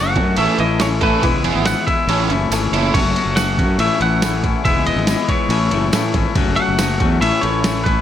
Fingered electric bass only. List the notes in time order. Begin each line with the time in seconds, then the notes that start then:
Already playing: F#1
0.16 F#2
0.38 A1
0.58 A1
1.23 E1
1.34 C#2
1.44 E1
1.55 G#1
2.07 A1
2.29 F#1
2.50 G#1
2.72 F#1
2.95 F#1
3.04 F#1
3.25 F#1
3.59 F#2
3.78 A1
4.00 A1
4.65 E1
4.75 C#2
4.86 E1
4.96 G#1
5.49 A1
5.71 F#1
5.93 A2
6.14 G#1
6.35 F#1
6.47 F#1
6.68 F#1
7.00 E2
7.21 A1
7.43 A1